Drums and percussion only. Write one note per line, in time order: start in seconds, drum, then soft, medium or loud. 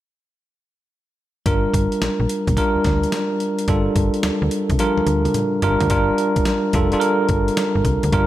1.46 kick medium
1.46 closed hi-hat medium
1.74 kick medium
1.74 closed hi-hat medium
1.92 closed hi-hat medium
2.02 snare loud
2.02 closed hi-hat medium
2.29 closed hi-hat medium
2.47 kick medium
2.47 closed hi-hat soft
2.57 kick medium
2.57 closed hi-hat medium
2.84 kick medium
2.84 snare medium
2.84 closed hi-hat medium
3.03 closed hi-hat medium
3.12 snare loud
3.12 closed hi-hat medium
3.40 closed hi-hat medium
3.59 closed hi-hat medium
3.68 kick medium
3.68 closed hi-hat medium
3.96 kick medium
3.96 closed hi-hat medium
4.14 closed hi-hat medium
4.23 snare loud
4.23 closed hi-hat medium
4.51 closed hi-hat medium
4.70 kick medium
4.70 closed hi-hat medium
4.79 closed hi-hat medium
4.79 high tom medium
4.98 high tom medium
5.07 closed hi-hat medium
5.25 closed hi-hat medium
5.25 mid tom medium
5.34 closed hi-hat medium
5.34 mid tom medium
5.62 closed hi-hat medium
5.62 floor tom medium
5.80 closed hi-hat medium
5.80 floor tom medium
5.90 kick loud
5.90 closed hi-hat medium
6.18 closed hi-hat medium
6.36 kick medium
6.36 closed hi-hat medium
6.45 snare loud
6.45 closed hi-hat medium
6.73 kick loud
6.73 closed hi-hat medium
6.92 closed hi-hat medium
7.01 closed hi-hat medium
7.29 kick medium
7.29 closed hi-hat medium
7.48 closed hi-hat medium
7.57 snare loud
7.57 closed hi-hat medium
7.85 kick medium
7.85 closed hi-hat medium
8.03 closed hi-hat medium
8.12 kick loud
8.12 closed hi-hat medium